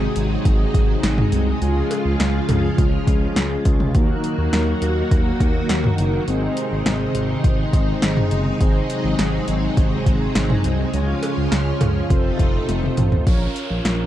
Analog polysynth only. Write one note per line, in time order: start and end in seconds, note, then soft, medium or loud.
0.00 1.58 G#3 medium
0.00 1.58 C4 medium
0.00 1.58 D#4 medium
0.00 1.58 G#4 medium
1.62 3.91 G#3 medium
1.62 3.91 C#4 medium
1.62 3.91 F4 medium
1.62 3.91 G#4 medium
3.95 6.24 A#3 medium
3.95 6.24 D#4 medium
3.95 6.24 F#4 medium
3.95 6.24 A#4 medium
6.28 8.57 C4 medium
6.28 8.57 D#4 medium
6.28 8.57 G#4 medium
6.28 8.57 C5 medium
8.61 10.90 C4 medium
8.61 10.90 D#4 medium
8.61 10.90 G#4 medium
8.61 10.90 C5 medium
10.94 12.08 C#4 medium
10.94 12.08 F4 medium
10.94 12.08 G#4 medium
10.94 12.08 C#5 medium
12.10 13.24 C4 medium
12.10 13.24 F4 medium
12.10 13.24 A4 medium
12.10 13.24 C5 medium
13.27 14.06 C#4 medium
13.27 14.06 F4 medium
13.27 14.06 A#4 medium
13.27 14.06 C#5 medium